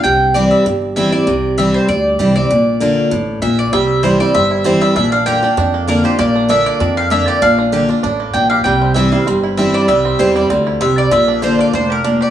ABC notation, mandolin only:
X:1
M:4/4
L:1/8
Q:"Swing" 1/4=195
K:Cmix
V:1 name="Mandolin"
g2 d e z2 e d- | d2 e c d3 d- | d6 e d | e2 c d e2 c e |
e f g4 B c | d2 e d2 f e d | f2 z4 g f | g2 e f z2 e d |
e2 c d z2 e d | e2 c d c B2 d |]